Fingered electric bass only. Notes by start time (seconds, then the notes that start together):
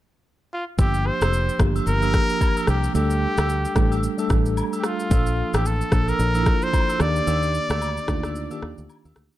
0.79 G1
1.21 F1
1.60 G1
1.87 G1
2.68 C2
2.95 D2
3.38 D2
3.76 A1
4.30 A1
5.11 A#1
5.54 A1
5.92 A#1
6.19 A#1
7.00 D#2
7.27 D#2
7.70 D2
8.08 D2
8.62 D#2
8.78 D2
9.05 D#2
9.17 D2